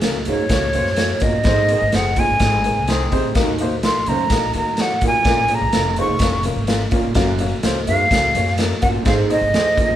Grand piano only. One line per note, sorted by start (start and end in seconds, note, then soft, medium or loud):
0.03 0.16 A#3 medium
0.03 0.15 C#4 medium
0.03 0.16 F#4 medium
0.03 0.16 A#4 medium
0.27 0.40 A#3 medium
0.27 0.40 C#4 medium
0.27 0.40 F#4 medium
0.27 0.41 A#4 medium
0.50 0.63 A#3 medium
0.50 0.64 C#4 medium
0.50 0.64 F#4 medium
0.50 0.64 C#5 medium
0.74 0.87 A#3 medium
0.74 0.87 C#4 medium
0.74 0.87 F#4 medium
0.74 0.88 C5 medium
0.97 1.10 A#3 medium
0.97 1.10 C#4 medium
0.97 1.11 F#4 medium
0.97 1.11 C#5 medium
1.21 1.34 A#3 medium
1.21 1.34 C#4 medium
1.21 1.35 F#4 medium
1.21 1.35 A#4 medium
1.44 1.58 C4 medium
1.44 1.58 D#4 medium
1.44 1.59 G#4 medium
1.44 1.59 C5 loud
1.69 1.82 C4 medium
1.69 1.82 D#4 medium
1.69 1.83 G#4 medium
1.69 1.83 A#4 medium
1.93 2.06 C4 medium
1.93 2.06 D#4 medium
1.93 2.07 G#4 medium
1.93 2.07 C5 medium
2.18 2.30 C4 medium
2.18 2.30 D#4 medium
2.18 2.30 G#4 medium
2.18 2.31 D#5 medium
2.40 2.53 C4 medium
2.40 2.54 D#4 medium
2.40 2.54 G#4 medium
2.40 2.54 D#5 medium
2.65 2.78 C4 medium
2.65 2.78 D#4 medium
2.65 2.78 G#4 medium
2.65 2.78 A#4 medium
2.88 3.01 C4 medium
2.88 3.01 D#4 medium
2.88 3.01 G#4 medium
2.88 3.02 C5 medium
3.12 3.25 C4 medium
3.12 3.25 D#4 medium
3.12 3.25 G#4 medium
3.12 3.25 C5 loud
3.35 3.48 A#3 loud
3.35 3.49 D#4 loud
3.35 3.49 F#4 medium
3.35 3.49 A#4 loud
3.60 3.73 A#3 medium
3.60 3.73 D#4 medium
3.60 3.73 F#4 medium
3.60 3.74 C5 medium
3.84 3.96 A#3 medium
3.84 3.97 D#4 medium
3.84 3.97 F#4 medium
3.84 3.97 A#4 medium
4.08 4.20 A#3 medium
4.08 4.21 D#4 medium
4.08 4.21 F#4 medium
4.08 4.21 C5 medium
4.31 4.44 A#3 medium
4.31 4.44 D#4 medium
4.31 4.44 F#4 medium
4.31 4.45 A#4 medium
4.55 4.67 A#3 medium
4.55 4.68 D#4 medium
4.55 4.68 F#4 medium
4.55 4.68 A#4 medium
4.79 4.91 A#3 medium
4.79 4.92 D#4 medium
4.79 4.92 F#4 medium
4.79 4.92 C#5 medium
5.03 5.16 A#3 medium
5.03 5.16 D#4 medium
5.03 5.16 F#4 medium
5.03 5.16 A#4 medium
5.26 5.39 A#3 medium
5.26 5.39 C#4 medium
5.26 5.39 F4 medium
5.26 5.39 A#4 medium
5.49 5.62 A#3 medium
5.49 5.62 C#4 medium
5.49 5.63 F4 medium
5.49 5.63 G#4 medium
5.74 5.86 A#3 medium
5.74 5.87 C#4 medium
5.74 5.87 F4 medium
5.74 5.88 A#4 medium
5.99 6.11 A#3 medium
5.99 6.11 C#4 medium
5.99 6.11 F4 medium
5.99 6.11 C5 medium
6.21 6.34 A#3 medium
6.21 6.34 C#4 medium
6.21 6.35 F4 medium
6.21 6.34 A#4 medium
6.45 6.58 A#3 medium
6.45 6.58 C#4 medium
6.45 6.58 F4 medium
6.45 6.58 A#4 medium
6.68 6.81 A#3 medium
6.68 6.81 C#4 medium
6.68 6.81 F4 medium
6.68 6.82 A#4 medium
6.91 7.05 A#3 medium
6.91 7.05 C#4 medium
6.91 7.05 F4 medium
6.91 7.05 A#4 medium
7.16 7.29 A#3 loud
7.16 7.29 C#4 loud
7.16 7.29 F#4 loud
7.16 7.29 A#4 loud
7.40 7.53 A#3 medium
7.40 7.53 C#4 medium
7.40 7.53 F#4 medium
7.40 7.53 A#4 medium
7.64 7.76 A#3 medium
7.64 7.77 C#4 medium
7.64 7.77 F#4 medium
7.64 7.77 C5 medium
7.88 8.00 A#3 medium
7.88 8.00 C#4 medium
7.88 8.00 F#4 medium
7.88 8.01 A#4 medium
8.11 8.24 A#3 medium
8.11 8.24 C#4 medium
8.11 8.24 F#4 medium
8.11 8.24 A#4 medium
8.35 8.48 A#3 medium
8.35 8.48 C#4 medium
8.35 8.48 F#4 medium
8.35 8.48 C#5 medium
8.59 8.71 A#3 medium
8.59 8.72 C#4 medium
8.59 8.72 F#4 medium
8.59 8.72 A#4 medium
8.82 8.95 A#3 medium
8.82 8.95 C#4 medium
8.82 8.95 F#4 medium
8.82 8.95 A#4 medium
9.05 9.18 C4 medium
9.05 9.18 D#4 medium
9.05 9.19 G#4 medium
9.05 9.19 C5 loud
9.29 9.42 C4 medium
9.29 9.42 D#4 medium
9.29 9.42 G#4 medium
9.29 9.43 C5 medium
9.54 9.66 C4 medium
9.54 9.67 D#4 medium
9.54 9.67 G#4 medium
9.54 9.67 C5 medium
9.76 9.89 C4 medium
9.76 9.90 D#4 medium
9.76 9.90 G#4 medium
9.76 9.90 A#4 medium